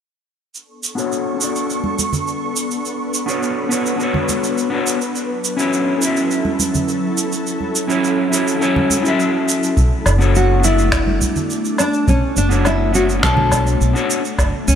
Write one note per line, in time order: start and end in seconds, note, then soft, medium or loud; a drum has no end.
0.54 5.11 B3 medium
0.54 5.12 D4 medium
0.54 2.83 A4 medium
0.54 5.11 C#6 medium
0.54 shaker soft
0.83 shaker medium
0.95 1.36 B3 medium
0.95 1.36 D4 medium
0.95 1.37 F#4 medium
0.95 1.37 A4 medium
0.95 1.38 C#5 medium
0.95 shaker soft
1.12 shaker soft
1.37 3.23 B3 medium
1.37 3.24 D4 medium
1.37 3.25 F#4 medium
1.37 shaker medium
1.42 3.25 A4 medium
1.42 3.26 D5 medium
1.55 shaker soft
1.70 shaker soft
1.84 high conga medium
1.99 high conga medium
1.99 shaker medium
2.13 low conga medium
2.13 shaker soft
2.27 shaker soft
2.56 shaker medium
2.71 shaker soft
2.85 5.14 B4 medium
2.85 shaker soft
3.14 shaker medium
3.26 3.67 B3 medium
3.26 3.67 D4 medium
3.26 3.68 F#4 medium
3.26 3.68 A4 medium
3.26 3.68 C#5 medium
3.26 shaker soft
3.43 shaker soft
3.69 3.95 B3 medium
3.69 3.96 D4 medium
3.69 3.96 F#4 medium
3.69 3.97 A4 medium
3.69 3.97 C#5 medium
3.69 shaker medium
3.86 shaker soft
3.96 4.67 B3 medium
3.96 4.68 D4 medium
3.96 4.69 F#4 medium
3.96 shaker soft
4.02 4.70 A4 medium
4.02 4.70 C#5 medium
4.14 high conga medium
4.14 low conga medium
4.29 high conga medium
4.29 shaker medium
4.43 shaker soft
4.58 shaker soft
4.70 4.95 B3 medium
4.70 4.95 D4 medium
4.70 4.96 F#4 medium
4.70 4.96 A4 medium
4.70 4.97 C#5 medium
4.86 shaker medium
5.01 shaker soft
5.15 9.73 F#3 medium
5.15 9.73 E4 medium
5.15 9.73 A4 medium
5.15 shaker soft
5.44 shaker medium
5.57 5.96 C#4 medium
5.57 5.98 E4 medium
5.57 5.98 F#4 medium
5.57 5.99 A4 medium
5.57 5.99 C#5 medium
5.57 shaker soft
5.73 shaker soft
5.98 7.84 C#4 medium
5.98 7.85 E4 medium
5.98 7.86 F#4 medium
5.98 shaker medium
6.03 7.87 A4 medium
6.03 7.88 E5 medium
6.16 shaker soft
6.31 shaker soft
6.45 high conga medium
6.59 high conga medium
6.59 shaker medium
6.74 low conga medium
6.74 shaker soft
6.88 shaker soft
7.17 shaker medium
7.32 shaker soft
7.47 shaker soft
7.61 high conga medium
7.75 shaker medium
7.87 8.28 C#4 medium
7.87 8.29 E4 medium
7.87 8.29 F#4 medium
7.87 8.29 A4 medium
7.87 8.30 C#5 medium
7.87 shaker soft
8.04 shaker soft
8.30 8.57 C#4 medium
8.30 8.58 E4 medium
8.30 8.58 F#4 medium
8.30 8.58 A4 medium
8.30 8.59 C#5 medium
8.30 shaker medium
8.47 shaker soft
8.59 9.00 C#4 medium
8.59 9.01 E4 medium
8.59 9.02 F#4 medium
8.59 9.02 A4 medium
8.59 9.03 C#5 loud
8.59 shaker soft
8.76 high conga medium
8.76 low conga medium
8.90 high conga medium
8.90 shaker medium
9.01 9.73 C#4 medium
9.01 9.74 E4 medium
9.01 9.75 F#4 medium
9.05 9.76 A4 medium
9.05 9.77 E5 medium
9.05 shaker soft
9.20 shaker soft
9.48 shaker medium
9.63 shaker soft
9.77 9.89 B1 medium
9.77 14.75 A3 medium
9.77 14.34 D4 medium
9.77 kick loud
9.77 shaker soft
10.06 11.17 F#1 medium
10.06 low woodblock medium
10.06 shaker medium
10.18 10.59 B3 medium
10.18 10.59 D4 medium
10.18 10.60 F#4 medium
10.18 10.60 A4 medium
10.18 10.61 C#5 medium
10.18 shaker soft
10.35 10.65 F#4 medium
10.35 shaker soft
10.60 12.46 B3 medium
10.60 12.47 D4 medium
10.60 12.48 F#4 medium
10.60 shaker medium
10.64 11.79 E4 medium
10.64 12.49 A4 medium
10.64 12.49 D5 medium
10.78 shaker soft
10.92 finger snap medium
10.92 kick loud
10.92 low woodblock medium
10.92 shaker soft
11.07 high conga medium
11.21 kick medium
11.21 high conga medium
11.21 shaker medium
11.36 low conga medium
11.36 shaker soft
11.50 shaker soft
11.65 shaker soft
11.78 12.06 D4 medium
11.78 low woodblock medium
11.78 shaker medium
11.93 shaker soft
12.08 12.20 B1 medium
12.08 12.37 C#4 medium
12.08 kick loud
12.08 shaker soft
12.37 13.19 F#1 medium
12.37 12.67 D4 medium
12.37 shaker medium
12.49 12.90 B3 medium
12.49 12.90 D4 medium
12.49 12.91 F#4 medium
12.49 12.91 A4 medium
12.49 12.92 C#5 medium
12.49 shaker soft
12.65 12.94 E4 medium
12.65 low woodblock medium
12.65 shaker soft
12.92 13.18 B3 medium
12.92 13.19 D4 medium
12.92 13.20 F#4 medium
12.92 13.03 F#4 medium
12.92 13.20 A4 medium
12.92 13.21 C#5 medium
12.92 shaker medium
13.09 shaker soft
13.19 13.77 B1 medium
13.19 13.90 B3 medium
13.19 13.91 D4 medium
13.19 13.92 F#4 medium
13.19 finger snap medium
13.19 kick loud
13.23 14.06 A4 medium
13.23 13.93 A4 medium
13.23 13.94 C#5 loud
13.23 shaker soft
13.37 high conga medium
13.37 low conga medium
13.52 kick medium
13.52 high conga medium
13.52 low woodblock medium
13.52 shaker medium
13.67 shaker soft
13.81 13.93 B1 medium
13.81 shaker soft
13.93 14.18 B3 medium
13.93 14.19 D4 medium
13.93 14.19 F#4 medium
13.93 14.20 A4 medium
13.93 14.20 C#5 loud
13.93 shaker soft
14.10 shaker medium
14.25 shaker soft
14.38 14.50 F#1 medium
14.38 14.75 E3 medium
14.38 14.75 F#4 medium
14.38 kick loud
14.38 low woodblock medium
14.38 shaker soft
14.68 14.75 C#2 medium
14.68 14.75 C#4 medium
14.68 shaker medium